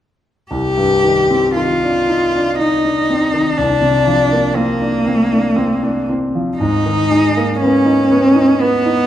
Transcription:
0.51 grand piano C2, cello G4
0.77 grand piano G2
1.04 grand piano D#3
1.31 grand piano C4
1.56 grand piano D#3, cello F4
1.83 grand piano D4
2.09 grand piano D#4
2.36 grand piano D4
2.59 cello D#4, grand piano D#4
2.85 grand piano D4
3.10 grand piano C4
3.34 grand piano D#3
3.57 grand piano C2, cello D4
3.81 grand piano C3
4.07 grand piano F3
4.32 grand piano A#3
4.55 cello A#3, grand piano C4
4.81 grand piano D4
5.06 grand piano C4
5.32 grand piano D4
5.56 grand piano C4
5.83 grand piano D4
6.09 grand piano C4
6.35 grand piano F3
6.58 grand piano G#2, cello D#4
6.86 grand piano D#3
7.11 grand piano G#3
7.37 grand piano A#3
7.61 grand piano B3, cello C#4
7.85 grand piano D#4
8.11 grand piano B3
8.35 grand piano D#4
8.61 grand piano B3, cello B3
8.86 grand piano D#4

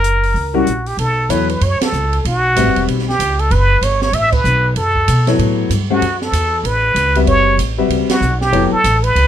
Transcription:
Already playing: upright bass F#1, muted trumpet A#4
0.04 closed hi-hat
0.23 open hi-hat
0.34 upright bass C#2, open hi-hat
0.54 grand piano G3 C#4 E4 F#4 A#4, muted trumpet F#4
0.67 upright bass A#1, closed hi-hat
0.86 muted trumpet G4, open hi-hat
0.97 upright bass B1, muted trumpet A4, ride
1.29 upright bass E2, grand piano F#3 B3 E4 A4 C#5, muted trumpet B4, hi-hat pedal, ride
1.49 muted trumpet B4, ride
1.61 upright bass F#2, muted trumpet C#5, ride
1.80 muted trumpet A4, muted upright bass stroke, snare, ride
1.92 upright bass C#2, hi-hat pedal
2.13 ride
2.25 upright bass B1, muted trumpet F#4, ride
2.56 upright bass A1, grand piano G3 C4 F#4 B4 E5, hi-hat pedal, ride
2.66 upright bass F#1
2.76 upright bass E1, ride
2.88 upright bass B1, ride
2.99 snare
3.09 muted trumpet G4, snare
3.19 upright bass C#2, hi-hat pedal, ride
3.39 muted trumpet A4, ride
3.51 upright bass F#1, muted trumpet B4, ride
3.81 upright bass G1, muted trumpet C#5, hi-hat pedal, ride
4.02 muted trumpet C#5, snare
4.12 upright bass A1, muted trumpet E5, ride
4.32 muted trumpet B4, kick, crash
4.44 upright bass B1, hi-hat pedal
4.76 upright bass F#2, muted trumpet A4, ride
4.95 kick
5.08 upright bass B2, hi-hat pedal, ride
5.27 grand piano F#3 B3 E4 A4 C#5, snare, ride
5.39 upright bass A2, ride
5.69 upright bass G2, hi-hat pedal, ride
5.90 grand piano A3 C#4 G4 C5 F#5, muted trumpet F#4
6.01 upright bass F#2, ride
6.22 muted trumpet A4, snare
6.32 upright bass E2, hi-hat pedal, ride
6.63 upright bass A1, muted trumpet B4, ride
6.94 upright bass C#2, hi-hat pedal, ride
7.15 grand piano G3 C4 F#4 B4 E5, ride
7.26 upright bass F#1, muted trumpet C#5, ride
7.57 upright bass A1, hi-hat pedal, ride
7.78 grand piano G3 C4 F#4 B4 E5
7.89 upright bass C#2, ride
8.08 muted trumpet F#4, muted upright bass stroke, snare, ride
8.21 upright bass B1, hi-hat pedal
8.41 muted trumpet G4, snare
8.52 upright bass F#1, grand piano F#3 B3 E4 A4 C#5, ride
8.72 muted trumpet A4, muted upright bass stroke
8.84 upright bass A1, hi-hat pedal, ride
9.03 muted trumpet B4, ride
9.15 upright bass C#2, ride

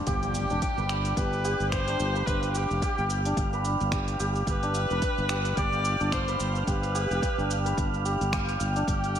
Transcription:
Already playing: santur D4 C5
0.07 fretless electric bass G1, santur G4, kamancheh G4, synth texture F5, kick, open hi-hat, impact, cabasa
0.23 open hi-hat, cabasa
0.34 cabasa
0.50 fretless electric bass F1, santur D4, cabasa
0.62 kick, open hi-hat, cabasa
0.78 fretless electric bass G1, santur B4, cabasa
0.89 finger snap, cabasa
1.05 open hi-hat, cabasa
1.16 fretless electric bass G1, santur G4, kamancheh B4, kick, open hi-hat, cabasa
1.33 cabasa
1.45 santur G4, cabasa
1.60 fretless electric bass G1, cabasa
1.71 kamancheh C5, finger snap, kick, open hi-hat, cabasa
1.88 santur D4, open hi-hat, cabasa
2.00 fretless electric bass G1, cabasa
2.15 santur B4, cabasa
2.26 fretless electric bass G1, kamancheh B4, kick, open hi-hat, cabasa
2.43 open hi-hat, cabasa
2.53 kamancheh G4, santur G4, cabasa
2.71 fretless electric bass F1, cabasa
2.82 santur G4, kick, open hi-hat, cabasa
2.98 fretless electric bass G1, cabasa
3.10 cabasa
3.25 santur D4, open hi-hat, cabasa
3.37 fretless electric bass G1, kick, open hi-hat, cabasa
3.53 santur B4, cabasa
3.65 cabasa
3.80 fretless electric bass G1, cabasa
3.92 santur G4, finger snap, kick, open hi-hat, cabasa
4.08 open hi-hat, cabasa
4.20 fretless electric bass G1, santur G4, cabasa
4.35 cabasa
4.47 fretless electric bass G1, kamancheh B4, kick, open hi-hat, cabasa
4.63 santur D4, open hi-hat, cabasa
4.74 cabasa
4.90 fretless electric bass F1, santur B4, cabasa
5.02 kick, open hi-hat, cabasa
5.18 fretless electric bass G1, cabasa
5.29 santur G4, finger snap, cabasa
5.45 open hi-hat, cabasa
5.57 fretless electric bass G1, santur G4, kamancheh D5, kick, open hi-hat, cabasa
5.73 cabasa
5.85 cabasa
6.00 fretless electric bass G1, santur D4, cabasa
6.12 kamancheh C5, finger snap, kick, open hi-hat, cabasa
6.28 santur B4, open hi-hat, cabasa
6.40 fretless electric bass G1, cabasa
6.55 cabasa
6.67 fretless electric bass G1, santur G4, kamancheh B4, kick, open hi-hat, cabasa
6.83 open hi-hat, cabasa
6.95 santur G4, cabasa
7.11 fretless electric bass F1, cabasa
7.22 kick, open hi-hat, cabasa
7.38 fretless electric bass G1, santur D4, cabasa
7.51 cabasa
7.65 santur B4, open hi-hat, cabasa
7.77 fretless electric bass G1, kick, open hi-hat, cabasa
7.94 cabasa
8.05 santur G4, cabasa
8.21 fretless electric bass G1, open hi-hat, cabasa
8.33 santur G4, finger snap, kick, open hi-hat, cabasa
8.49 open hi-hat, cabasa
8.60 fretless electric bass G1, cabasa
8.76 santur D4, open hi-hat, cabasa
8.88 fretless electric bass G1, kamancheh G4, kick, open hi-hat, cabasa
9.04 open hi-hat, cabasa
9.15 cabasa

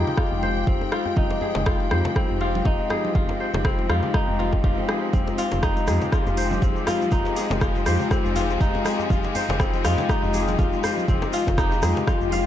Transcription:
Already playing: string section F3 C4 G5, analog polysynth G#3 D#4 F4 G4, kora C4 D#4 F4 G#4 C5
0.07 muted conga, low conga
0.17 kora F4, kick, cross-stick, djembe tone
0.31 fm bass F1
0.43 kora C5, muted conga, djembe tone
0.67 fm bass F1, kora C4, kick, muted conga
0.81 djembe tone
0.92 kora F4, cross-stick, muted conga
1.06 djembe tone
1.16 fm bass F1, analog polysynth G#3 D#4 F4 G4, kora D#4, kick, high conga, low conga
1.31 djembe slap, muted conga
1.41 kora G#4, djembe tone
1.55 fm bass F1, analog polysynth G#3 D#4 F4 G4, djembe slap, muted conga, low conga
1.66 kora F4, kick, cross-stick, djembe tone, low conga
1.80 muted conga
1.91 fm bass F2, analog polysynth G#3 D#4 F4 G4, kora C5, cross-stick, high conga
2.05 muted conga, djembe slap, djembe tone, low conga
2.16 kora C4, kick, cross-stick, high conga
2.29 fm bass F1, djembe tone
2.41 kora F4, muted conga
2.55 high conga
2.65 fm bass F1, kora D#4, kick, muted conga, djembe tone, high conga
2.90 kora G#4, cross-stick, muted conga, djembe tone
3.05 high conga
3.15 fm bass F1, analog polysynth G#3 D#4 F4 G4, kora F4, kick, high conga, low conga
3.29 muted conga, djembe slap, djembe tone
3.40 kora C5
3.54 fm bass F1, analog polysynth G#3 D#4 F4 G4, muted conga, djembe slap, djembe tone, low conga
3.65 kora C4, kick, cross-stick, low conga
3.79 muted conga
3.89 fm bass F2, analog polysynth G#3 D#4 F4 G4, kora F4, cross-stick, djembe tone, high conga
4.03 muted conga, low conga
4.14 kora D#4, kick, cross-stick, djembe tone
4.28 fm bass F1
4.39 kora F4, muted conga
4.53 kick, djembe tone
4.64 fm bass F1, kora F4, kick, muted conga
4.78 djembe tone
4.89 kora G#4, cross-stick, muted conga
5.13 fm bass F1, analog polysynth G#3 F4 G4, string section G#3, kora C4, kick, high conga, low conga, shaker
5.27 muted conga, djembe slap, djembe tone, shaker
5.38 kora F4, open hi-hat, shaker
5.52 fm bass F1, analog polysynth G#3 D#4 F4 G4, djembe slap, muted conga, low conga, shaker
5.63 kora D#4, kick, cross-stick, djembe tone, low conga, shaker
5.77 muted conga, shaker
5.87 fm bass F2, analog polysynth G#3 D#4 F4 G4, kora G#4, cross-stick, open hi-hat, djembe tone, high conga, shaker
6.01 muted conga, djembe slap, low conga, shaker
6.12 kora F4, kick, cross-stick, high conga, shaker
6.27 fm bass F1, djembe tone, shaker
6.37 kora C5, open hi-hat, muted conga, shaker
6.51 high conga, djembe tone, shaker
6.62 fm bass F1, kora C4, kick, muted conga, high conga, shaker
6.76 shaker
6.87 kora F4, cross-stick, open hi-hat, muted conga, djembe tone, shaker
7.01 high conga, shaker
7.11 fm bass F1, analog polysynth G#3 D#4 F4, kora D#4, kick, high conga, djembe tone, low conga, shaker
7.25 muted conga, djembe slap, shaker
7.36 kora G#4, open hi-hat, shaker
7.50 fm bass F1, analog polysynth G#3 D#4 F4 G4, djembe slap, muted conga, djembe tone, low conga, shaker
7.61 kora F4, kick, cross-stick, low conga, shaker
7.75 muted conga, djembe tone, shaker
7.86 fm bass F2, analog polysynth G#3 D#4 F4 G4, kora C5, cross-stick, open hi-hat, high conga, shaker
8.00 muted conga, low conga, shaker
8.11 kora C4, kick, cross-stick, djembe tone, shaker
8.25 fm bass F1, shaker
8.35 kora F4, open hi-hat, muted conga, djembe tone, shaker
8.50 shaker
8.61 fm bass F1, kora D#4, kick, muted conga, shaker
8.74 djembe tone, shaker
8.85 kora G#4, cross-stick, open hi-hat, muted conga, shaker
8.99 djembe tone, shaker
9.10 fm bass F1, analog polysynth G#3 D#4 F4 G4, kora F4, kick, high conga, low conga, shaker
9.23 djembe slap, muted conga, shaker
9.35 kora C5, open hi-hat, djembe tone, shaker
9.48 fm bass F1, analog polysynth G#3 D#4 F4 G4, muted conga, djembe slap, low conga, shaker
9.59 kora C4, kick, cross-stick, djembe tone, low conga, shaker
9.74 muted conga, shaker
9.84 fm bass F2, analog polysynth G#3 D#4 F4 G4, kora F4, cross-stick, open hi-hat, high conga, shaker
9.98 muted conga, djembe slap, djembe tone, low conga, shaker
10.09 kora D#4, kick, cross-stick, high conga, shaker
10.23 fm bass F1, djembe tone, shaker
10.33 kora G#4, open hi-hat, muted conga, shaker
10.48 high conga, shaker
10.58 fm bass F1, kora F4, kick, muted conga, djembe tone, high conga, shaker
10.73 shaker
10.83 kora C5, cross-stick, open hi-hat, muted conga, djembe tone, shaker
10.97 high conga, shaker
11.08 fm bass F1, analog polysynth G#3 F4 G4, kora C4, kick, high conga, low conga, shaker
11.22 muted conga, djembe slap, djembe tone, shaker
11.33 kora F4, open hi-hat, shaker
11.46 fm bass F1, analog polysynth G#3 D#4 F4 G4, kick, muted conga, djembe slap, djembe tone, low conga, shaker
11.58 kora D#4, kick, cross-stick, low conga, shaker
11.72 muted conga, shaker
11.82 fm bass F2, analog polysynth G#3 D#4 F4 G4, kora G#4, cross-stick, open hi-hat, high conga, djembe tone, shaker
11.96 muted conga, djembe slap, low conga, shaker
12.07 kora F4, kick, cross-stick, swell, high conga, djembe tone, shaker
12.21 fm bass F1, shaker
12.32 kora F5, open hi-hat, muted conga, high conga, shaker

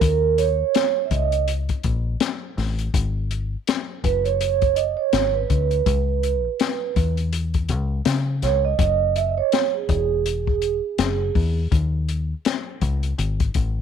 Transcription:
Already playing: vibraphone A#4
0.01 fingered electric bass D#2, kick, closed hi-hat
0.38 vibraphone C#5, closed hi-hat
0.75 snare, closed hi-hat
1.05 vibraphone E5
1.11 fingered electric bass C#2, vibraphone D#5, kick, closed hi-hat
1.32 closed hi-hat
1.48 closed hi-hat
1.69 kick, closed hi-hat
1.84 fingered electric bass A#1, kick, closed hi-hat
2.20 snare, closed hi-hat
2.58 fingered electric bass A1, snare, open hi-hat
2.79 closed hi-hat
2.94 fingered electric bass G#1, kick, closed hi-hat
3.31 closed hi-hat
3.67 snare, closed hi-hat
4.04 fingered electric bass F#1, vibraphone B4, kick, closed hi-hat
4.25 vibraphone C#5, closed hi-hat
4.41 closed hi-hat
4.62 kick, closed hi-hat
4.76 vibraphone D#5, closed hi-hat
4.97 vibraphone C#5
5.13 fingered electric bass G#1, snare, closed hi-hat
5.34 vibraphone B4
5.50 fingered electric bass D2, kick, closed hi-hat
5.71 closed hi-hat
5.86 fingered electric bass C#2, kick, closed hi-hat
6.23 closed hi-hat
6.60 snare, closed hi-hat
6.96 fingered electric bass E2, kick, closed hi-hat
7.17 closed hi-hat
7.33 closed hi-hat
7.54 kick, closed hi-hat
7.69 fingered electric bass C#2, kick, closed hi-hat
8.05 fingered electric bass C#3, snare, closed hi-hat
8.42 fingered electric bass C#2, vibraphone C#5, snare, closed hi-hat
8.65 vibraphone D#5
8.79 fingered electric bass F#1, kick, closed hi-hat
9.16 vibraphone E5, closed hi-hat
9.29 vibraphone D#5
9.38 vibraphone C#5
9.52 snare, closed hi-hat
9.74 vibraphone G#4
9.89 fingered electric bass E1, kick, closed hi-hat
10.26 closed hi-hat
10.47 kick
10.62 closed hi-hat
10.98 fingered electric bass F#1, snare, closed hi-hat
11.35 fingered electric bass E2, kick, open hi-hat
11.72 fingered electric bass D#2, kick, closed hi-hat
12.09 closed hi-hat
12.45 snare, closed hi-hat
12.81 fingered electric bass C#2, kick, closed hi-hat
13.03 closed hi-hat
13.18 fingered electric bass G#1, closed hi-hat
13.40 kick, closed hi-hat
13.54 fingered electric bass A1, kick, closed hi-hat

